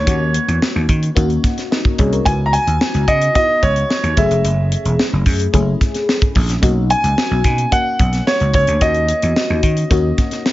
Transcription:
Already playing: C#5
0.06 D#2 A#3 C#4 D#4 F#4, kick, closed hi-hat
0.34 closed hi-hat
0.48 E2, closed hi-hat
0.62 snare
0.76 D#2
0.89 D#3, kick, closed hi-hat
1.03 closed hi-hat
1.15 D#2 A#3 C#4 D#4 F#4, kick, closed hi-hat
1.30 closed hi-hat
1.44 kick, snare, closed hi-hat
1.58 snare, closed hi-hat
1.71 A#4 D#5, snare
1.85 kick
1.99 C2 G#4 C#5, kick, closed hi-hat
2.13 D#4 A#4, closed hi-hat
2.25 C#2 B3 D#4 E4 F#4 G#5, kick, closed hi-hat
2.46 A#5
2.53 G#5, closed hi-hat
2.67 D#2, closed hi-hat
2.81 snare
2.94 C#2, closed hi-hat
3.08 C#3 D#5, kick, closed hi-hat
3.22 closed hi-hat
3.34 B3 D#4 E4 F#4 D#5, kick, closed hi-hat
3.63 C#2 C#5, kick, closed hi-hat
3.76 closed hi-hat
3.90 snare
4.03 D#2, closed hi-hat
4.17 F#1 A3 C#4 E4 G#4 E5, kick, closed hi-hat
4.30 F1, closed hi-hat
4.44 F#1, closed hi-hat
4.72 closed hi-hat
4.85 E1, closed hi-hat
4.99 snare
5.13 F#1
5.26 F#2, kick, open hi-hat
5.40 closed hi-hat
5.53 F#1 A3 C#4 E4 G#4, kick, closed hi-hat
5.81 kick, snare, closed hi-hat
5.94 snare, closed hi-hat
6.09 snare
6.22 kick, closed hi-hat
6.35 A#1, kick, open hi-hat
6.49 snare, closed hi-hat
6.62 B1 A#3 C#4 D#4 F#4, kick, closed hi-hat
6.90 G#5, closed hi-hat
7.04 C#2, closed hi-hat
7.18 snare
7.31 B1
7.44 B2, kick, snare, closed hi-hat
7.58 closed hi-hat
7.71 A#3 C#4 D#4 F#4 F#5, kick, closed hi-hat
7.99 B1, kick, closed hi-hat
8.13 snare, closed hi-hat
8.27 C#5, snare
8.40 C#2, closed hi-hat
8.54 C#2 C#5, kick, closed hi-hat
8.67 D2, closed hi-hat
8.81 D#2 A#3 C#4 D#4 F#4 D#5, kick, closed hi-hat
8.95 closed hi-hat
9.09 closed hi-hat
9.22 E2, closed hi-hat
9.36 snare
9.50 D#2
9.63 D#3, kick, closed hi-hat
9.77 closed hi-hat
9.90 D#2 A#3 C#4 D#4 F#4, kick, closed hi-hat
10.18 kick, snare, closed hi-hat
10.31 snare, closed hi-hat
10.46 snare

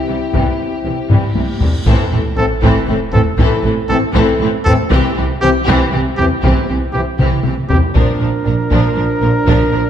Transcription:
Already playing: C4 E4 G4
0.08 C2 C3 E3 G3
0.33 C2 C3 E3 G3, taiko, cymbal swell
0.84 C2 C3 E3 G3
1.10 C2 C3 E3 G3, taiko low-mid
1.35 C2 C3 E3 C4, taiko high
1.61 C2 C3 E3 G3, taiko low
1.86 A1 A2 E3 C4 A4, taiko, sub drop
2.11 A1 A2 E3 C4 A4
2.37 A1 A2 E3 C4 A4
2.61 A1 A2 E3 C4 A4, taiko
2.88 A1 A2 E3 C4 A4
3.12 A1 A2 E3 C4 A4, taiko low
3.39 A1 A2 E3 C4 A4, taiko
3.64 A1 A2 E3 C4 A4
3.89 A1 A2 E3 C4 A4
4.14 A1 A2 E3 C4 A4, taiko
4.40 A1 A2 E3 C4 A4
4.65 A1 A2 E3 C4 A4, taiko low
4.90 C2 C3 E3 C4 G4, taiko
5.16 C2 C3 E3 C4 G4
5.41 C2 C3 E3 C4 G4
5.67 C2 C3 E3 C4 G4, taiko
5.91 C2 C3 E3 C4 G4
6.17 C2 C3 E3 C4 G4, taiko low
6.43 C2 C3 E3 C4 G4, taiko
6.68 C2 C3 E3 C4 G4
6.93 C2 C3 E3 C4 G4
7.19 C2 C3 E3 C4 G4, taiko mid
7.44 C2 C3 E3 C4 G4, taiko mid
7.69 C2 C3 E3 C4 G4, taiko low
7.94 A#1 A#2 F3 D4 A#4, taiko
8.20 A#1 A#2 F3 D4 A#4
8.45 A#1 A#2 F3 D4 A#4
8.70 A#1 A#2 F3 D4 A#4, taiko
8.95 A#1 A#2 F3 D4 A#4
9.21 A#1 A#2 F3 D4 A#4
9.46 A#1 A#2 F3 D4 A#4, taiko
9.71 A#1 A#2 F3 D4 A#4

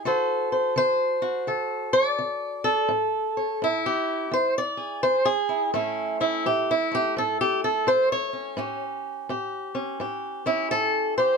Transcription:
0.05 D3 F#4 A4 C5
0.52 C5
0.76 D3 C5
1.22 F#4
1.47 D3 A4
1.93 D5
2.19 D3
2.64 A4
2.89 A2
3.37 C#5
3.62 A2 E4
3.86 G4
4.31 E2 C5
4.58 D5
4.77 G#4
5.03 E2 C5
5.25 G#4
5.49 E4
5.74 A2 A3 C#4 E4
6.20 C#4 E4
6.46 A2 G4
6.71 E4
6.91 A3 G4
7.17 A2 A4
7.41 G4
7.64 A4
7.87 A2 C5
8.12 C#5
8.33 C#4
8.57 A2 C#4 G4
9.29 A2 G4
9.75 C#4
10.00 A2 G4
10.46 C#4 E4
10.71 A2 A4
11.18 G4 C5

